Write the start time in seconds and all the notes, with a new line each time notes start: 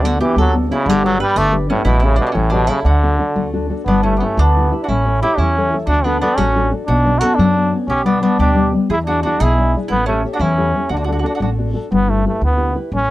Already playing: D2 D3
0.03 D3 B3 D4 F#4
0.19 E3 B3 D4 F#4 G4
0.36 D2 F#3 A3 A4
0.53 B3 D4 F#4
0.69 C#3 B3 D4 E4 F#4
0.86 G1 D3 G3 G4
1.03 F#3 D4 G4 A4 B4
1.18 G3 D4 G4 B4
1.36 G1 D3 A3 D5
1.52 D4 G4 B4
1.70 A2 C#4 D4 G4 B4
1.85 A1 B2 A3 E4
2.00 E4 G4 A4 C#5
2.04 C#3
2.16 B2 D4 G4 A4
2.27 D4
2.31 A1 A2 B2 E3 C#4
2.50 B2 D4 G4 A4 C#5
2.67 C#3 E4 G4 A4 C#5
2.83 D2 D3 F#4
3.02 D4 F#4 A4
3.19 D4 F#4 A4
3.36 D2 A3
3.53 D4 F#4 A4
3.69 D4 F#4 A4
3.86 G1 G3 B3 D4
4.03 A3 C#4 E4 G4 B4
4.17 B3 C#4 D4
4.21 A3 E4 G4 B4
4.37 D2 D3 B3 D4
4.56 E4 G4 B4
4.72 E4 G4 B4
4.82 D4 F#4
4.88 A1 A3 C#4 E4
5.05 E4 A4 C#5
5.22 E4 G4 A4 C#5
5.38 E2 E3 C#4 E4
5.57 E4 A4 C#5
5.73 E4 A4 C#5
5.87 D2 D3 D4 F#4
6.04 B3 D4 F#4 A4
6.20 B3 D4 F#4 A4
6.36 A1 A3 C#4 F#4
6.55 D4 F#4 A4
6.71 D4 F#4 A4
6.86 B1 B2 D4 F#4
7.05 B3 C#4 D4
7.18 F#4 A4
7.23 B3 C#4 D4
7.35 F#2 F#3 D4
7.39 F#4
7.55 B3 C#4 D4
7.73 B3 C#4 D4
7.88 B1 B2 C#4 G4
8.04 G3 B3 D4
8.21 G3 B3 D4
8.38 D2 B2 D4 G4
8.54 G3 B3 D4
8.72 G3 B3 D4
8.89 E2 E3 E4 G#4
9.06 D4 E4 F#4 G#4
9.23 D4 E4 F#4 G#4
9.40 B1 B2 E4 G#4
9.58 D4 E4 G#4
9.76 D4 E4 G#4
9.88 A1 A3 B3 E4
10.06 A3 C#4 G4 A4 C#5
10.25 G4 A4 C#5
10.33 D4 F#4
10.39 E2 E3 C#4 E4
10.58 G4 A4 C#5
10.76 G4 A4 C#5
10.89 D2 D3 D4 F#4
10.97 D4 F#4
11.04 D4 F#4
11.09 F#4 A4
11.13 D4
11.19 D4 F#4
11.24 F#4 A4
11.28 D4
11.35 D4 F#4
11.40 A1 A3 D4 F#4
11.58 D4 F#4 A4
11.73 D4 F#4 A4
11.91 G1 G3 B3
12.08 A3 E4 G4 B4
12.26 A3 E4 G4 B4
12.41 D2 D3 B3
12.57 E4 G4 B4
12.75 E4 G4 B4
12.92 A1 A3 C#4